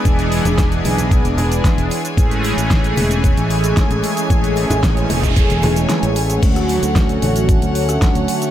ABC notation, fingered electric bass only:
X:1
M:4/4
L:1/16
Q:1/4=113
K:A
V:1 name="Fingered electric bass" clef=bass
E,,,3 E,,,3 B,,,3 E,,,3 z E,,, z2 | A,,,3 A,,,3 E,,,3 A,,,3 z A,,, z2 | A,,,3 A,,,3 E,,,3 E,,,3 z A,,,3 | D,,3 D,,3 A,,,3 D,,3 z D,, z2 |]